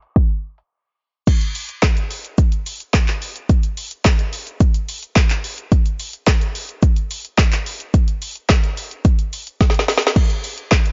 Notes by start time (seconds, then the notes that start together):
0.02 closed hi-hat
0.16 kick, closed hi-hat
0.30 closed hi-hat
0.58 closed hi-hat
1.27 kick, closed hi-hat, crash, shaker
1.41 closed hi-hat, shaker
1.55 open hi-hat, shaker
1.69 closed hi-hat, shaker
1.82 kick, snare, clap, closed hi-hat, shaker
1.97 closed hi-hat, shaker
2.11 open hi-hat, shaker
2.24 closed hi-hat, shaker
2.38 kick, closed hi-hat, shaker
2.52 closed hi-hat, shaker
2.66 open hi-hat, shaker
2.80 closed hi-hat, shaker
2.93 kick, snare, clap, closed hi-hat, shaker
3.08 clap, closed hi-hat, shaker
3.22 open hi-hat, shaker
3.36 closed hi-hat, shaker
3.49 kick, closed hi-hat, shaker
3.63 closed hi-hat, shaker
3.77 open hi-hat, shaker
3.91 closed hi-hat, shaker
4.05 kick, snare, clap, closed hi-hat
4.19 closed hi-hat, shaker
4.33 open hi-hat, shaker
4.47 closed hi-hat, shaker
4.60 kick, closed hi-hat, shaker
4.74 closed hi-hat, shaker
4.89 open hi-hat, shaker
5.03 closed hi-hat, shaker
5.16 kick, snare, clap, closed hi-hat, shaker
5.30 clap, closed hi-hat, shaker
5.44 open hi-hat, shaker
5.58 closed hi-hat, shaker
5.72 kick, closed hi-hat, shaker
5.86 closed hi-hat, shaker
6.00 open hi-hat, shaker
6.13 closed hi-hat, shaker
6.27 kick, snare, clap, closed hi-hat, shaker
6.41 closed hi-hat, shaker
6.55 open hi-hat, shaker
6.69 closed hi-hat, shaker
6.83 kick, closed hi-hat, shaker
6.96 closed hi-hat, shaker
7.11 open hi-hat, shaker
7.25 closed hi-hat, shaker
7.38 kick, snare, clap, closed hi-hat, shaker
7.52 clap, closed hi-hat, shaker
7.66 open hi-hat, shaker
7.80 closed hi-hat, shaker
7.94 kick, closed hi-hat, shaker
8.08 closed hi-hat, shaker
8.22 open hi-hat, shaker
8.35 closed hi-hat, shaker
8.49 kick, snare, clap, closed hi-hat, shaker
8.64 closed hi-hat, shaker
8.77 open hi-hat, shaker
8.91 closed hi-hat, shaker
9.05 kick, closed hi-hat, shaker
9.19 closed hi-hat, shaker
9.33 open hi-hat, shaker
9.47 closed hi-hat, shaker
9.61 kick, snare, closed hi-hat, shaker
9.70 snare
9.74 closed hi-hat, shaker
9.79 snare
9.88 snare, open hi-hat, shaker
9.98 snare
10.02 closed hi-hat, shaker
10.07 snare
10.16 kick, crash
10.30 closed hi-hat, shaker
10.44 open hi-hat, shaker
10.58 closed hi-hat, shaker
10.71 kick, snare, clap, closed hi-hat
10.86 closed hi-hat, shaker